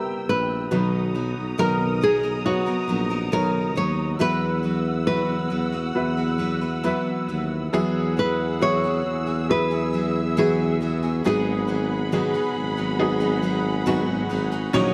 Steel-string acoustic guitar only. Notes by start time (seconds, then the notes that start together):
0.71 B2 D#3 F#3 B3 D#4
1.15 F#3 B3 D#4
1.58 B2 D#3 F#3 B3 D#4 A#4
2.01 F#3 B3 D#4 A#4
2.23 F#3 B3 D#4 A#4
2.66 F#3 B3 D#4 A#4
2.88 F#3 B3 D#4 A#4
3.10 F#3 B3 D#4 A#4
3.32 B2 D#3 F#3 B3 D#4 A#4
3.76 F#3 B3 D#4 A#4
4.19 E3 F#3 B3 F#4 B4
4.63 F#3 B3 F#4 B4
5.07 E3 F#3 B3 F#4 B4
5.50 F#3 B3 F#4 B4
5.72 B3 F#4 B4
6.17 B3 F#4 B4
6.38 F#3 B3 F#4 B4
6.61 B3 F#4 B4
6.83 E3 F#3 B3 F#4 B4
7.28 F#3 B3 F#4 B4
7.73 E3 F#3 B3 F#4 G#4
8.17 F#3 B3 F#4 G#4
8.61 E3 F#3 B3 F#4 G#4
8.84 B3 F#4 G#4
9.27 B3 F#4 G#4
9.71 B3 F#4 G#4
9.93 F#3 B3 F#4 G#4
10.37 E3 F#3 B3 F#4 G#4
10.81 F#3 B3 F#4 G#4
11.03 B3 F#4 G#4
11.24 G#2 D#3 F#3 B3 D#4 G#4
11.68 F#3 B3 D#4 G#4
12.12 G#2 D#3 F#3 B3 D#4 G#4
12.34 F#3 B3 D#4 G#4
12.77 F#3 B3 D#4 G#4
13.20 F#3 B3 D#4 G#4
13.42 F#3 B3 D#4 G#4
13.86 G#2 D#3 F#3 B3 D#4 G#4
14.29 F#3 B3 D#4 G#4
14.52 F#3 B3 D#4 G#4
14.73 A#2 D#3 F#3 C#4 D#4 A#4